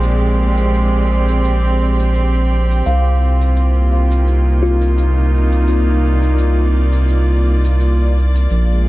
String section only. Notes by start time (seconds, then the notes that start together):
Already playing: A#2 G#3 C4 G4 D5
2.86 C3
3.16 F4
3.55 A#3
3.89 D#4
5.41 D5
8.51 A#2
8.71 G#3